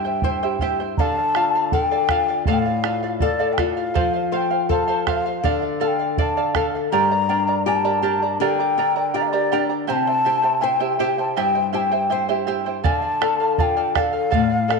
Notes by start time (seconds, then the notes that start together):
Already playing: G2 G4 G5
0.05 E4 C5 G5
0.22 E4 C5 E5 G5, bombo low
0.43 E4 G4 C5 E5 G5
0.59 E4 G4 C5 E5 G5, bombo low
0.80 E4 C5 G5
0.97 D3 A4 D5 F5 A5 A#5, bombo low
1.17 D5 F5
1.35 F4 A4 D5 F5, bombo rim
1.55 D5 F5
1.72 A4 D5 F5 G5, bombo low
1.91 A4 D5 F5
2.09 F4 A4 D5 F5, bombo rim, bombo low
2.28 D5 F5
2.46 A2 A4 D5 F5, bombo low
2.53 G5
2.59 F5
2.66 D5 F5
2.83 F4 A4 D5 F5, bombo rim
3.03 D5 F5
3.20 A4 D5 F5, bombo low
3.39 A4 D5 F5
3.52 G5
3.58 F4 A4 D5 F5, bombo rim, bombo low
3.77 D5 F5
3.94 F3 A4 C5 F5, bombo low
4.14 C5 F5
4.32 A4 C5 F5 G5
4.51 C5 F5
4.69 A4 C5 F5 A5, bombo low
4.88 A4 C5 F5
5.07 A4 C5 F5, bombo rim, bombo low
5.26 C5 F5
5.43 D3 A4 D5 F5, bombo low
5.62 D5 F5
5.80 A4 D5 F5 A5
5.88 G5
5.99 D5 F5
6.18 A4 D5 F5 A5, bombo low
6.37 A4 D5 F5
6.55 A4 D5 F5, bombo rim, bombo low
6.75 D5 F5
6.92 G2 G4 A#4 D5 G5 A#5
7.11 A#4 D5 A#5
7.29 D4 A#4 D5 G5 A#5
7.47 A#4 D5 A#5
7.66 G4 A#4 D5 G5 A5 A#5
7.85 G4 A#4 D5 G5 A#5
8.02 D4 G4 A#4 D5 G5 A#5
8.22 A#4 D5 A#5
8.40 D3 G4 A#4 D5 G5 A#5
8.59 A#4 D5 A#5
8.78 D4 A#4 D5 G5 A#5
8.96 A#4 D5 A#5
9.14 G4 A#4 D5 G5 A#5
9.22 F5
9.28 D5
9.33 G4 A#4 D5 G5 A#5
9.52 D4 G4 A#4 D5 G5 A#5
9.69 A#4 D5 A#5
9.87 C3 E4 G4 C5 E5 G5 A#5
9.92 A5
10.07 E4 C5 G5
10.25 E4 G4 C5 E5 G5
10.42 E4 C5 G5
10.61 E4 C5 E5 G5
10.80 E4 G4 C5 E5 G5
10.99 E4 G4 C5 E5 G5
11.18 E4 C5 G5 A5
11.28 A5
11.36 G2 E4 G4 C5 E5 G5
11.55 E4 C5 G5
11.73 E4 G4 C5 E5 G5 A5
11.77 G5
11.92 E4 C5 G5
12.10 E4 C5 E5 G5
12.29 E4 G4 C5 E5 G5
12.47 E4 G4 C5 E5 G5
12.66 E4 C5 G5
12.84 D3 A4 D5 F5 G#5, bombo low
12.95 A5
13.02 D5 F5
13.21 A4 D5 F5, bombo rim
13.40 D5 F5
13.58 F4 A4 D5 F5 G5 A5, bombo low
13.77 A4 D5 F5
13.95 A4 D5 F5 G5, bombo rim, bombo low
14.00 F5
14.13 D5 F5
14.31 A2 A4 D5 F5, bombo low
14.50 D5 F5
14.68 A4 D5 F5, bombo rim